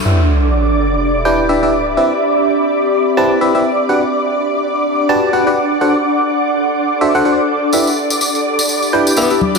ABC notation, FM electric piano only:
X:1
M:4/4
L:1/16
Q:"Swing 16ths" 1/4=125
K:Em
V:1 name="FM electric piano"
[DEGBe] z8 z [DEGBg]2 [DEGBe] [DEGBe] z2 | [CEGBe] z8 z [CEGBa]2 [CEGBe] [CEGBe] z2 | [DFGBf] z8 z [DFGBa]2 [DFGBf] [DFGBf] z2 | [DFAcf] z8 z [DFAce] [DFAcf] [DFAcf] z3 |
[DEGBe] z8 z [DEGBg]2 [DEGBe] [DEGBe] z2 |]